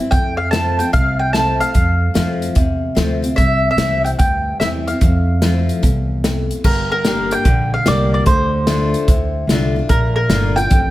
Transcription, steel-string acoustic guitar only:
Already playing: E4
0.00 C4
0.12 F2
0.52 F3 A3 C4 F4
0.79 C4 F4
0.93 C3
1.34 F3 A3 C4 F4
1.74 F2
2.14 F3 A3 C4 F4
2.55 C3
2.95 F3 A3 C4 F4
3.22 C4 F4
3.36 C3
3.78 E3 G3 C4 E4
4.20 G2
4.60 E3 G3 C4 E4
4.88 C4 E4
5.02 F2
5.42 F3 A3 C4 F4
5.83 E2
6.25 F2
6.65 G2
7.05 G3 A#3 D4 G4
7.46 D3
7.86 G3 A#3 D4 G4
8.27 D3
8.67 D3 A3 D4 F4
9.09 A2
9.50 D3 A3 D4 F4
9.76 D4 F4
9.91 A#2
10.31 D3 A#3 D4 F4
10.57 D4 F4
10.71 F2

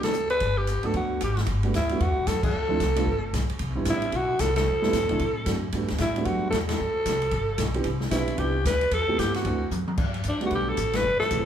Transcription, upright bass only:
Already playing: D2
0.41 G1
0.84 F#1
0.94 D2
1.22 G#1
1.47 G1
1.74 D2
2.00 E2
2.10 D2
2.18 B1
2.27 F#2
2.54 D2
2.80 C2
3.07 G1
3.33 B1
3.50 muted upright bass stroke
3.60 C2
3.70 B1
3.79 G1
3.86 A1
4.13 B1
4.40 C2
4.67 E2
4.93 G2
5.03 E2
5.12 C2
5.20 A2
5.46 F#2
5.73 G2
5.83 F#2
5.91 D2
6.00 A2
6.26 F#2
6.52 E2
6.80 D2
7.06 C2
7.32 G1
7.58 B1
7.85 C2
8.11 B1
8.38 C2
8.65 D2
8.91 E2
9.19 G2
9.45 D2
9.71 F#2
9.98 G2
10.25 D2
10.51 B1
10.78 A1
11.04 F#1
11.20 muted upright bass stroke
11.31 E1

